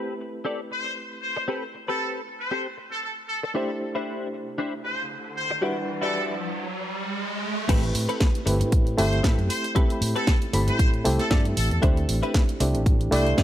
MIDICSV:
0, 0, Header, 1, 9, 480
1, 0, Start_track
1, 0, Tempo, 517241
1, 1376, Time_signature, 4, 2, 24, 8
1, 12466, End_track
2, 0, Start_track
2, 0, Title_t, "Trumpet section"
2, 0, Program_c, 0, 61
2, 657, Note_on_c, 0, 72, 82
2, 859, Note_off_c, 0, 72, 0
2, 1136, Note_on_c, 0, 72, 79
2, 1339, Note_off_c, 0, 72, 0
2, 1747, Note_on_c, 0, 69, 84
2, 1942, Note_off_c, 0, 69, 0
2, 2223, Note_on_c, 0, 72, 81
2, 2420, Note_off_c, 0, 72, 0
2, 2706, Note_on_c, 0, 69, 82
2, 2776, Note_off_c, 0, 69, 0
2, 2813, Note_on_c, 0, 69, 71
2, 2899, Note_off_c, 0, 69, 0
2, 3049, Note_on_c, 0, 69, 79
2, 3137, Note_off_c, 0, 69, 0
2, 3186, Note_on_c, 0, 69, 66
2, 3256, Note_off_c, 0, 69, 0
2, 4494, Note_on_c, 0, 72, 86
2, 4697, Note_off_c, 0, 72, 0
2, 4974, Note_on_c, 0, 72, 83
2, 5177, Note_off_c, 0, 72, 0
2, 5586, Note_on_c, 0, 69, 83
2, 5781, Note_off_c, 0, 69, 0
2, 8332, Note_on_c, 0, 72, 95
2, 8537, Note_off_c, 0, 72, 0
2, 8810, Note_on_c, 0, 72, 92
2, 9016, Note_off_c, 0, 72, 0
2, 9424, Note_on_c, 0, 69, 94
2, 9620, Note_off_c, 0, 69, 0
2, 9909, Note_on_c, 0, 72, 94
2, 10103, Note_off_c, 0, 72, 0
2, 10390, Note_on_c, 0, 69, 92
2, 10458, Note_off_c, 0, 69, 0
2, 10496, Note_on_c, 0, 69, 77
2, 10580, Note_off_c, 0, 69, 0
2, 10736, Note_on_c, 0, 69, 97
2, 10821, Note_off_c, 0, 69, 0
2, 10871, Note_on_c, 0, 69, 81
2, 10939, Note_off_c, 0, 69, 0
2, 12180, Note_on_c, 0, 72, 95
2, 12381, Note_off_c, 0, 72, 0
2, 12466, End_track
3, 0, Start_track
3, 0, Title_t, "Clean electric guitar"
3, 0, Program_c, 1, 27
3, 0, Note_on_c, 1, 60, 73
3, 0, Note_on_c, 1, 67, 68
3, 0, Note_on_c, 1, 69, 67
3, 0, Note_on_c, 1, 71, 83
3, 124, Note_off_c, 1, 60, 0
3, 124, Note_off_c, 1, 67, 0
3, 125, Note_off_c, 1, 69, 0
3, 126, Note_off_c, 1, 71, 0
3, 414, Note_on_c, 1, 60, 89
3, 419, Note_on_c, 1, 67, 74
3, 422, Note_on_c, 1, 69, 64
3, 427, Note_on_c, 1, 74, 80
3, 549, Note_off_c, 1, 60, 0
3, 549, Note_off_c, 1, 67, 0
3, 549, Note_off_c, 1, 69, 0
3, 549, Note_off_c, 1, 74, 0
3, 1372, Note_on_c, 1, 60, 110
3, 1377, Note_on_c, 1, 67, 99
3, 1380, Note_on_c, 1, 69, 95
3, 1386, Note_on_c, 1, 71, 97
3, 1508, Note_off_c, 1, 60, 0
3, 1508, Note_off_c, 1, 67, 0
3, 1508, Note_off_c, 1, 69, 0
3, 1508, Note_off_c, 1, 71, 0
3, 1748, Note_on_c, 1, 71, 93
3, 1752, Note_on_c, 1, 69, 73
3, 1755, Note_on_c, 1, 67, 68
3, 1759, Note_on_c, 1, 60, 75
3, 2043, Note_off_c, 1, 60, 0
3, 2043, Note_off_c, 1, 67, 0
3, 2044, Note_off_c, 1, 69, 0
3, 2044, Note_off_c, 1, 71, 0
3, 2331, Note_on_c, 1, 60, 87
3, 2336, Note_on_c, 1, 67, 70
3, 2341, Note_on_c, 1, 69, 68
3, 2347, Note_on_c, 1, 72, 72
3, 2467, Note_off_c, 1, 60, 0
3, 2468, Note_off_c, 1, 67, 0
3, 2468, Note_off_c, 1, 69, 0
3, 2469, Note_off_c, 1, 72, 0
3, 3292, Note_on_c, 1, 62, 112
3, 3299, Note_on_c, 1, 67, 98
3, 3304, Note_on_c, 1, 72, 107
3, 3306, Note_on_c, 1, 64, 85
3, 3428, Note_off_c, 1, 62, 0
3, 3429, Note_off_c, 1, 64, 0
3, 3429, Note_off_c, 1, 67, 0
3, 3430, Note_off_c, 1, 72, 0
3, 3666, Note_on_c, 1, 64, 70
3, 3670, Note_on_c, 1, 72, 84
3, 3676, Note_on_c, 1, 67, 67
3, 3679, Note_on_c, 1, 62, 74
3, 3963, Note_off_c, 1, 62, 0
3, 3963, Note_off_c, 1, 64, 0
3, 3963, Note_off_c, 1, 67, 0
3, 3963, Note_off_c, 1, 72, 0
3, 4253, Note_on_c, 1, 62, 87
3, 4258, Note_on_c, 1, 67, 79
3, 4264, Note_on_c, 1, 72, 83
3, 4268, Note_on_c, 1, 64, 66
3, 4388, Note_off_c, 1, 62, 0
3, 4388, Note_off_c, 1, 67, 0
3, 4389, Note_off_c, 1, 64, 0
3, 4389, Note_off_c, 1, 72, 0
3, 5214, Note_on_c, 1, 66, 92
3, 5219, Note_on_c, 1, 67, 94
3, 5221, Note_on_c, 1, 74, 107
3, 5224, Note_on_c, 1, 64, 88
3, 5348, Note_off_c, 1, 64, 0
3, 5349, Note_off_c, 1, 66, 0
3, 5349, Note_off_c, 1, 67, 0
3, 5349, Note_off_c, 1, 74, 0
3, 5583, Note_on_c, 1, 64, 84
3, 5593, Note_on_c, 1, 74, 87
3, 5595, Note_on_c, 1, 67, 67
3, 5600, Note_on_c, 1, 66, 63
3, 5882, Note_off_c, 1, 64, 0
3, 5883, Note_off_c, 1, 66, 0
3, 5883, Note_off_c, 1, 67, 0
3, 5884, Note_off_c, 1, 74, 0
3, 7133, Note_on_c, 1, 60, 109
3, 7138, Note_on_c, 1, 67, 102
3, 7141, Note_on_c, 1, 69, 96
3, 7144, Note_on_c, 1, 71, 106
3, 7268, Note_off_c, 1, 60, 0
3, 7268, Note_off_c, 1, 67, 0
3, 7268, Note_off_c, 1, 69, 0
3, 7269, Note_off_c, 1, 71, 0
3, 7506, Note_on_c, 1, 71, 100
3, 7507, Note_on_c, 1, 69, 80
3, 7511, Note_on_c, 1, 67, 78
3, 7513, Note_on_c, 1, 60, 76
3, 7681, Note_off_c, 1, 60, 0
3, 7682, Note_off_c, 1, 67, 0
3, 7682, Note_off_c, 1, 69, 0
3, 7682, Note_off_c, 1, 71, 0
3, 8568, Note_on_c, 1, 60, 86
3, 8574, Note_on_c, 1, 67, 82
3, 8578, Note_on_c, 1, 69, 76
3, 8583, Note_on_c, 1, 71, 87
3, 8706, Note_off_c, 1, 60, 0
3, 8707, Note_off_c, 1, 67, 0
3, 8707, Note_off_c, 1, 69, 0
3, 8707, Note_off_c, 1, 71, 0
3, 9051, Note_on_c, 1, 60, 127
3, 9055, Note_on_c, 1, 67, 104
3, 9057, Note_on_c, 1, 71, 127
3, 9059, Note_on_c, 1, 69, 87
3, 9186, Note_off_c, 1, 60, 0
3, 9186, Note_off_c, 1, 67, 0
3, 9187, Note_off_c, 1, 69, 0
3, 9188, Note_off_c, 1, 71, 0
3, 9426, Note_on_c, 1, 71, 107
3, 9430, Note_on_c, 1, 69, 74
3, 9434, Note_on_c, 1, 67, 81
3, 9436, Note_on_c, 1, 60, 80
3, 9602, Note_off_c, 1, 60, 0
3, 9602, Note_off_c, 1, 67, 0
3, 9603, Note_off_c, 1, 69, 0
3, 9603, Note_off_c, 1, 71, 0
3, 10491, Note_on_c, 1, 60, 99
3, 10496, Note_on_c, 1, 67, 84
3, 10501, Note_on_c, 1, 69, 84
3, 10505, Note_on_c, 1, 74, 94
3, 10627, Note_off_c, 1, 60, 0
3, 10628, Note_off_c, 1, 67, 0
3, 10628, Note_off_c, 1, 69, 0
3, 10628, Note_off_c, 1, 74, 0
3, 10972, Note_on_c, 1, 62, 127
3, 10976, Note_on_c, 1, 67, 103
3, 10979, Note_on_c, 1, 72, 120
3, 10982, Note_on_c, 1, 64, 91
3, 11108, Note_off_c, 1, 62, 0
3, 11108, Note_off_c, 1, 64, 0
3, 11108, Note_off_c, 1, 67, 0
3, 11108, Note_off_c, 1, 72, 0
3, 11346, Note_on_c, 1, 64, 93
3, 11351, Note_on_c, 1, 71, 109
3, 11355, Note_on_c, 1, 67, 80
3, 11357, Note_on_c, 1, 62, 80
3, 11522, Note_off_c, 1, 62, 0
3, 11523, Note_off_c, 1, 64, 0
3, 11523, Note_off_c, 1, 67, 0
3, 11524, Note_off_c, 1, 71, 0
3, 12414, Note_on_c, 1, 62, 94
3, 12420, Note_on_c, 1, 64, 85
3, 12420, Note_on_c, 1, 74, 106
3, 12423, Note_on_c, 1, 67, 78
3, 12466, Note_off_c, 1, 62, 0
3, 12466, Note_off_c, 1, 64, 0
3, 12466, Note_off_c, 1, 67, 0
3, 12466, Note_off_c, 1, 74, 0
3, 12466, End_track
4, 0, Start_track
4, 0, Title_t, "Reed electric piano"
4, 0, Program_c, 2, 4
4, 0, Note_on_c, 2, 57, 69
4, 0, Note_on_c, 2, 60, 61
4, 0, Note_on_c, 2, 64, 66
4, 0, Note_on_c, 2, 67, 67
4, 0, Note_on_c, 2, 71, 74
4, 3264, Note_off_c, 2, 57, 0
4, 3266, Note_off_c, 2, 60, 0
4, 3269, Note_off_c, 2, 64, 0
4, 3271, Note_off_c, 2, 67, 0
4, 3274, Note_off_c, 2, 71, 0
4, 3286, Note_on_c, 2, 57, 68
4, 3290, Note_on_c, 2, 62, 62
4, 3295, Note_on_c, 2, 64, 65
4, 3301, Note_on_c, 2, 67, 65
4, 3304, Note_on_c, 2, 72, 79
4, 5185, Note_off_c, 2, 57, 0
4, 5187, Note_off_c, 2, 62, 0
4, 5190, Note_off_c, 2, 64, 0
4, 5193, Note_off_c, 2, 67, 0
4, 5194, Note_off_c, 2, 72, 0
4, 5209, Note_on_c, 2, 55, 71
4, 5214, Note_on_c, 2, 62, 67
4, 5219, Note_on_c, 2, 64, 66
4, 5222, Note_on_c, 2, 78, 65
4, 5229, Note_on_c, 2, 71, 79
4, 6173, Note_off_c, 2, 55, 0
4, 6175, Note_off_c, 2, 62, 0
4, 6177, Note_off_c, 2, 64, 0
4, 6179, Note_off_c, 2, 78, 0
4, 6182, Note_off_c, 2, 71, 0
4, 7125, Note_on_c, 2, 57, 78
4, 7130, Note_on_c, 2, 60, 71
4, 7133, Note_on_c, 2, 64, 71
4, 7139, Note_on_c, 2, 67, 70
4, 7145, Note_on_c, 2, 71, 85
4, 7824, Note_off_c, 2, 57, 0
4, 7827, Note_off_c, 2, 60, 0
4, 7829, Note_off_c, 2, 64, 0
4, 7831, Note_off_c, 2, 67, 0
4, 7834, Note_off_c, 2, 71, 0
4, 7850, Note_on_c, 2, 57, 85
4, 7854, Note_on_c, 2, 60, 76
4, 7854, Note_on_c, 2, 64, 78
4, 7859, Note_on_c, 2, 67, 79
4, 7859, Note_on_c, 2, 71, 91
4, 8311, Note_off_c, 2, 57, 0
4, 8313, Note_off_c, 2, 60, 0
4, 8313, Note_off_c, 2, 64, 0
4, 8316, Note_off_c, 2, 67, 0
4, 8316, Note_off_c, 2, 71, 0
4, 8329, Note_on_c, 2, 57, 100
4, 8333, Note_on_c, 2, 60, 93
4, 8337, Note_on_c, 2, 64, 96
4, 8340, Note_on_c, 2, 67, 88
4, 9027, Note_off_c, 2, 57, 0
4, 9029, Note_off_c, 2, 60, 0
4, 9031, Note_off_c, 2, 64, 0
4, 9032, Note_off_c, 2, 67, 0
4, 9047, Note_on_c, 2, 57, 77
4, 9049, Note_on_c, 2, 60, 76
4, 9056, Note_on_c, 2, 64, 73
4, 9058, Note_on_c, 2, 67, 77
4, 9063, Note_on_c, 2, 83, 91
4, 9746, Note_off_c, 2, 57, 0
4, 9747, Note_off_c, 2, 60, 0
4, 9750, Note_off_c, 2, 64, 0
4, 9751, Note_off_c, 2, 67, 0
4, 9754, Note_off_c, 2, 83, 0
4, 9774, Note_on_c, 2, 57, 82
4, 9776, Note_on_c, 2, 60, 76
4, 9778, Note_on_c, 2, 64, 76
4, 9780, Note_on_c, 2, 67, 76
4, 9782, Note_on_c, 2, 83, 95
4, 10233, Note_off_c, 2, 57, 0
4, 10235, Note_off_c, 2, 60, 0
4, 10235, Note_off_c, 2, 64, 0
4, 10236, Note_off_c, 2, 67, 0
4, 10238, Note_off_c, 2, 83, 0
4, 10249, Note_on_c, 2, 57, 104
4, 10255, Note_on_c, 2, 60, 95
4, 10261, Note_on_c, 2, 64, 94
4, 10265, Note_on_c, 2, 67, 94
4, 10947, Note_off_c, 2, 57, 0
4, 10950, Note_off_c, 2, 60, 0
4, 10953, Note_off_c, 2, 64, 0
4, 10954, Note_off_c, 2, 67, 0
4, 10968, Note_on_c, 2, 57, 81
4, 10975, Note_on_c, 2, 62, 75
4, 10978, Note_on_c, 2, 64, 70
4, 10984, Note_on_c, 2, 67, 77
4, 10987, Note_on_c, 2, 60, 93
4, 11666, Note_off_c, 2, 57, 0
4, 11670, Note_off_c, 2, 62, 0
4, 11671, Note_off_c, 2, 64, 0
4, 11674, Note_off_c, 2, 67, 0
4, 11676, Note_off_c, 2, 60, 0
4, 11695, Note_on_c, 2, 57, 84
4, 11698, Note_on_c, 2, 62, 79
4, 11700, Note_on_c, 2, 64, 77
4, 11704, Note_on_c, 2, 60, 91
4, 11704, Note_on_c, 2, 67, 79
4, 12154, Note_off_c, 2, 57, 0
4, 12156, Note_off_c, 2, 62, 0
4, 12156, Note_off_c, 2, 64, 0
4, 12158, Note_off_c, 2, 67, 0
4, 12159, Note_off_c, 2, 60, 0
4, 12167, Note_on_c, 2, 57, 108
4, 12170, Note_on_c, 2, 62, 99
4, 12175, Note_on_c, 2, 64, 100
4, 12179, Note_on_c, 2, 67, 92
4, 12186, Note_on_c, 2, 74, 111
4, 12466, Note_off_c, 2, 57, 0
4, 12466, Note_off_c, 2, 62, 0
4, 12466, Note_off_c, 2, 64, 0
4, 12466, Note_off_c, 2, 67, 0
4, 12466, Note_off_c, 2, 74, 0
4, 12466, End_track
5, 0, Start_track
5, 0, Title_t, "Fingered electric bass"
5, 0, Program_c, 3, 33
5, 7136, Note_on_c, 3, 33, 95
5, 7336, Note_off_c, 3, 33, 0
5, 7374, Note_on_c, 3, 45, 89
5, 7483, Note_off_c, 3, 45, 0
5, 7853, Note_on_c, 3, 31, 88
5, 7986, Note_on_c, 3, 45, 80
5, 8000, Note_off_c, 3, 31, 0
5, 8303, Note_off_c, 3, 45, 0
5, 8334, Note_on_c, 3, 31, 99
5, 8535, Note_off_c, 3, 31, 0
5, 8574, Note_on_c, 3, 45, 98
5, 8683, Note_off_c, 3, 45, 0
5, 8703, Note_on_c, 3, 42, 84
5, 8794, Note_off_c, 3, 42, 0
5, 9292, Note_on_c, 3, 45, 92
5, 9402, Note_off_c, 3, 45, 0
5, 9775, Note_on_c, 3, 31, 91
5, 9907, Note_on_c, 3, 45, 81
5, 9921, Note_off_c, 3, 31, 0
5, 10224, Note_off_c, 3, 45, 0
5, 10258, Note_on_c, 3, 36, 93
5, 10364, Note_off_c, 3, 36, 0
5, 10495, Note_on_c, 3, 43, 88
5, 10695, Note_off_c, 3, 43, 0
5, 10738, Note_on_c, 3, 33, 95
5, 10844, Note_off_c, 3, 33, 0
5, 10868, Note_on_c, 3, 40, 90
5, 10956, Note_off_c, 3, 40, 0
5, 10976, Note_on_c, 3, 38, 96
5, 11176, Note_off_c, 3, 38, 0
5, 11217, Note_on_c, 3, 33, 91
5, 11324, Note_off_c, 3, 33, 0
5, 11696, Note_on_c, 3, 36, 91
5, 11828, Note_off_c, 3, 36, 0
5, 11828, Note_on_c, 3, 33, 78
5, 12144, Note_off_c, 3, 33, 0
5, 12174, Note_on_c, 3, 36, 100
5, 12375, Note_off_c, 3, 36, 0
5, 12414, Note_on_c, 3, 33, 99
5, 12466, Note_off_c, 3, 33, 0
5, 12466, End_track
6, 0, Start_track
6, 0, Title_t, "Riser"
6, 0, Program_c, 4, 103
6, 3296, Note_on_c, 4, 60, 67
6, 7136, Note_off_c, 4, 60, 0
6, 12466, End_track
7, 0, Start_track
7, 0, Title_t, "Muted clean electric guitar strokes"
7, 659, Note_on_c, 9, 29, 28
7, 752, Note_off_c, 9, 29, 0
7, 1267, Note_on_c, 9, 29, 77
7, 1360, Note_off_c, 9, 29, 0
7, 1618, Note_on_c, 9, 29, 30
7, 1710, Note_off_c, 9, 29, 0
7, 2576, Note_on_c, 9, 29, 33
7, 2668, Note_off_c, 9, 29, 0
7, 3187, Note_on_c, 9, 29, 78
7, 3280, Note_off_c, 9, 29, 0
7, 3536, Note_on_c, 9, 29, 34
7, 3629, Note_off_c, 9, 29, 0
7, 4498, Note_on_c, 9, 29, 33
7, 4590, Note_off_c, 9, 29, 0
7, 5109, Note_on_c, 9, 29, 80
7, 5202, Note_off_c, 9, 29, 0
7, 5454, Note_on_c, 9, 29, 32
7, 5547, Note_off_c, 9, 29, 0
7, 7374, Note_on_c, 9, 29, 34
7, 7467, Note_off_c, 9, 29, 0
7, 7849, Note_on_c, 9, 29, 89
7, 7942, Note_off_c, 9, 29, 0
7, 7981, Note_on_c, 9, 29, 34
7, 8074, Note_off_c, 9, 29, 0
7, 8809, Note_on_c, 9, 29, 32
7, 8902, Note_off_c, 9, 29, 0
7, 8946, Note_on_c, 9, 29, 34
7, 9039, Note_off_c, 9, 29, 0
7, 9292, Note_on_c, 9, 29, 37
7, 9384, Note_off_c, 9, 29, 0
7, 9776, Note_on_c, 9, 29, 96
7, 9868, Note_off_c, 9, 29, 0
7, 9905, Note_on_c, 9, 29, 34
7, 9997, Note_off_c, 9, 29, 0
7, 10733, Note_on_c, 9, 29, 33
7, 10826, Note_off_c, 9, 29, 0
7, 10871, Note_on_c, 9, 29, 33
7, 10963, Note_off_c, 9, 29, 0
7, 11216, Note_on_c, 9, 29, 36
7, 11309, Note_off_c, 9, 29, 0
7, 11695, Note_on_c, 9, 29, 87
7, 11788, Note_off_c, 9, 29, 0
7, 11828, Note_on_c, 9, 29, 37
7, 11921, Note_off_c, 9, 29, 0
7, 12466, End_track
8, 0, Start_track
8, 0, Title_t, "Muted fingered electric bass strokes"
8, 10387, Note_on_c, 9, 29, 46
8, 10480, Note_off_c, 9, 29, 0
8, 12466, End_track
9, 0, Start_track
9, 0, Title_t, "Drums"
9, 7136, Note_on_c, 9, 36, 121
9, 7137, Note_on_c, 9, 42, 87
9, 7137, Note_on_c, 9, 49, 105
9, 7229, Note_off_c, 9, 36, 0
9, 7230, Note_off_c, 9, 42, 0
9, 7230, Note_off_c, 9, 49, 0
9, 7269, Note_on_c, 9, 42, 39
9, 7362, Note_off_c, 9, 42, 0
9, 7377, Note_on_c, 9, 46, 104
9, 7470, Note_off_c, 9, 46, 0
9, 7509, Note_on_c, 9, 42, 37
9, 7602, Note_off_c, 9, 42, 0
9, 7614, Note_on_c, 9, 38, 127
9, 7616, Note_on_c, 9, 36, 116
9, 7616, Note_on_c, 9, 42, 82
9, 7707, Note_off_c, 9, 38, 0
9, 7709, Note_off_c, 9, 36, 0
9, 7709, Note_off_c, 9, 42, 0
9, 7750, Note_on_c, 9, 42, 56
9, 7843, Note_off_c, 9, 42, 0
9, 7859, Note_on_c, 9, 46, 108
9, 7952, Note_off_c, 9, 46, 0
9, 7989, Note_on_c, 9, 42, 57
9, 8081, Note_off_c, 9, 42, 0
9, 8095, Note_on_c, 9, 36, 116
9, 8095, Note_on_c, 9, 42, 88
9, 8188, Note_off_c, 9, 36, 0
9, 8188, Note_off_c, 9, 42, 0
9, 8230, Note_on_c, 9, 42, 38
9, 8322, Note_off_c, 9, 42, 0
9, 8338, Note_on_c, 9, 46, 98
9, 8430, Note_off_c, 9, 46, 0
9, 8470, Note_on_c, 9, 42, 39
9, 8563, Note_off_c, 9, 42, 0
9, 8575, Note_on_c, 9, 36, 117
9, 8576, Note_on_c, 9, 38, 127
9, 8579, Note_on_c, 9, 42, 81
9, 8668, Note_off_c, 9, 36, 0
9, 8669, Note_off_c, 9, 38, 0
9, 8672, Note_off_c, 9, 42, 0
9, 8711, Note_on_c, 9, 42, 37
9, 8804, Note_off_c, 9, 42, 0
9, 8817, Note_on_c, 9, 46, 111
9, 8910, Note_off_c, 9, 46, 0
9, 8949, Note_on_c, 9, 42, 38
9, 9042, Note_off_c, 9, 42, 0
9, 9055, Note_on_c, 9, 36, 117
9, 9057, Note_on_c, 9, 42, 84
9, 9148, Note_off_c, 9, 36, 0
9, 9150, Note_off_c, 9, 42, 0
9, 9189, Note_on_c, 9, 42, 38
9, 9282, Note_off_c, 9, 42, 0
9, 9297, Note_on_c, 9, 46, 105
9, 9390, Note_off_c, 9, 46, 0
9, 9430, Note_on_c, 9, 42, 38
9, 9523, Note_off_c, 9, 42, 0
9, 9533, Note_on_c, 9, 38, 127
9, 9535, Note_on_c, 9, 42, 83
9, 9536, Note_on_c, 9, 36, 123
9, 9626, Note_off_c, 9, 38, 0
9, 9628, Note_off_c, 9, 36, 0
9, 9628, Note_off_c, 9, 42, 0
9, 9668, Note_on_c, 9, 42, 55
9, 9761, Note_off_c, 9, 42, 0
9, 9776, Note_on_c, 9, 46, 111
9, 9869, Note_off_c, 9, 46, 0
9, 9909, Note_on_c, 9, 42, 53
9, 10001, Note_off_c, 9, 42, 0
9, 10015, Note_on_c, 9, 36, 123
9, 10017, Note_on_c, 9, 42, 85
9, 10108, Note_off_c, 9, 36, 0
9, 10110, Note_off_c, 9, 42, 0
9, 10148, Note_on_c, 9, 42, 36
9, 10241, Note_off_c, 9, 42, 0
9, 10257, Note_on_c, 9, 46, 108
9, 10350, Note_off_c, 9, 46, 0
9, 10387, Note_on_c, 9, 38, 38
9, 10389, Note_on_c, 9, 42, 37
9, 10480, Note_off_c, 9, 38, 0
9, 10482, Note_off_c, 9, 42, 0
9, 10493, Note_on_c, 9, 38, 125
9, 10495, Note_on_c, 9, 42, 82
9, 10496, Note_on_c, 9, 36, 124
9, 10586, Note_off_c, 9, 38, 0
9, 10588, Note_off_c, 9, 42, 0
9, 10589, Note_off_c, 9, 36, 0
9, 10629, Note_on_c, 9, 42, 36
9, 10722, Note_off_c, 9, 42, 0
9, 10738, Note_on_c, 9, 46, 111
9, 10830, Note_off_c, 9, 46, 0
9, 10871, Note_on_c, 9, 42, 37
9, 10963, Note_off_c, 9, 42, 0
9, 10976, Note_on_c, 9, 36, 123
9, 10980, Note_on_c, 9, 42, 82
9, 11069, Note_off_c, 9, 36, 0
9, 11073, Note_off_c, 9, 42, 0
9, 11112, Note_on_c, 9, 42, 39
9, 11204, Note_off_c, 9, 42, 0
9, 11218, Note_on_c, 9, 46, 108
9, 11311, Note_off_c, 9, 46, 0
9, 11351, Note_on_c, 9, 42, 35
9, 11444, Note_off_c, 9, 42, 0
9, 11455, Note_on_c, 9, 38, 125
9, 11456, Note_on_c, 9, 36, 125
9, 11457, Note_on_c, 9, 42, 81
9, 11548, Note_off_c, 9, 38, 0
9, 11549, Note_off_c, 9, 36, 0
9, 11550, Note_off_c, 9, 42, 0
9, 11590, Note_on_c, 9, 42, 48
9, 11683, Note_off_c, 9, 42, 0
9, 11697, Note_on_c, 9, 46, 119
9, 11790, Note_off_c, 9, 46, 0
9, 11829, Note_on_c, 9, 42, 52
9, 11922, Note_off_c, 9, 42, 0
9, 11935, Note_on_c, 9, 36, 124
9, 11938, Note_on_c, 9, 42, 82
9, 12028, Note_off_c, 9, 36, 0
9, 12030, Note_off_c, 9, 42, 0
9, 12071, Note_on_c, 9, 42, 35
9, 12164, Note_off_c, 9, 42, 0
9, 12179, Note_on_c, 9, 46, 106
9, 12271, Note_off_c, 9, 46, 0
9, 12311, Note_on_c, 9, 42, 35
9, 12404, Note_off_c, 9, 42, 0
9, 12415, Note_on_c, 9, 36, 123
9, 12417, Note_on_c, 9, 38, 127
9, 12419, Note_on_c, 9, 42, 79
9, 12466, Note_off_c, 9, 36, 0
9, 12466, Note_off_c, 9, 38, 0
9, 12466, Note_off_c, 9, 42, 0
9, 12466, End_track
0, 0, End_of_file